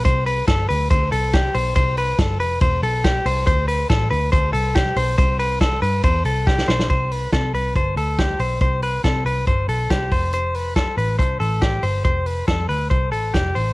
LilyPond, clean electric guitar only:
\new Staff \with { instrumentName = "Clean electric guitar" } { \time 4/4 \key f \lydian \tempo 4 = 140 c''8 b'8 a'8 b'8 c''8 a'8 g'8 c''8 | c''8 b'8 a'8 b'8 c''8 a'8 g'8 c''8 | c''8 b'8 a'8 b'8 c''8 a'8 g'8 c''8 | c''8 b'8 a'8 b'8 c''8 a'8 g'8 c''8 |
c''8 b'8 a'8 b'8 c''8 a'8 g'8 c''8 | c''8 b'8 a'8 b'8 c''8 a'8 g'8 c''8 | c''8 b'8 a'8 b'8 c''8 a'8 g'8 c''8 | c''8 b'8 a'8 b'8 c''8 a'8 g'8 c''8 | }